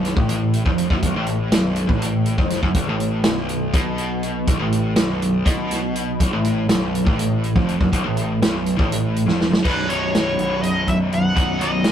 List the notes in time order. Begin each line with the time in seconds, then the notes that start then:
Already playing: B0 B1
0.05 snare, closed hi-hat
0.16 A1 A2, kick
0.29 closed hi-hat
0.53 closed hi-hat
0.66 F1 F2, kick
0.78 closed hi-hat
0.90 F#1 F#2, kick
1.02 B0 B1, kick, closed hi-hat
1.15 A1 A2
1.26 closed hi-hat
1.52 B0 B1, snare, closed hi-hat
1.76 closed hi-hat
1.89 A1 A2, kick
2.02 closed hi-hat
2.26 closed hi-hat
2.38 F1 F2, kick
2.50 snare, closed hi-hat
2.63 F#1 F#2, kick
2.74 B0 B1, kick, closed hi-hat
2.87 A1 A2
3.00 closed hi-hat
3.24 B0 B1, snare, closed hi-hat
3.49 closed hi-hat
3.74 B1 B2, kick, closed hi-hat
3.98 closed hi-hat
4.23 closed hi-hat
4.47 B0 B1, kick, closed hi-hat
4.59 A1 A2
4.72 closed hi-hat
4.96 B0 B1, snare, closed hi-hat
5.22 closed hi-hat
5.45 B1 B2, kick, snare, closed hi-hat
5.71 snare, closed hi-hat
5.96 closed hi-hat
6.20 B0 B1, kick, closed hi-hat
6.32 A1 A2
6.45 closed hi-hat
6.69 B0 B1, snare, closed hi-hat
6.95 closed hi-hat
7.06 A1 A2, kick
7.19 closed hi-hat
7.44 closed hi-hat
7.55 F1 F2, kick
7.69 closed hi-hat
7.81 F#1 F#2, kick
7.92 B0 B1, kick, closed hi-hat
8.05 A1 A2
8.17 closed hi-hat
8.42 B0 B1, snare, closed hi-hat
8.66 closed hi-hat
8.78 A1 A2, kick
8.92 closed hi-hat
9.16 closed hi-hat
9.26 F1 F2, snare
9.41 snare
9.51 F#1 F#2, snare
9.63 B0 B1 F#2 B2 F#3 D#4 B4, kick, crash
9.89 B0 C#5, closed hi-hat
10.14 B0, snare, closed hi-hat
10.38 B0, closed hi-hat
10.62 B0 D#5, closed hi-hat
10.87 B0 E5, kick, closed hi-hat
11.12 B0 F#5, closed hi-hat
11.35 B0 B1 F#2 B2 F#3 D#4, kick, closed hi-hat
11.61 B0 D#5, closed hi-hat
11.84 snare, closed hi-hat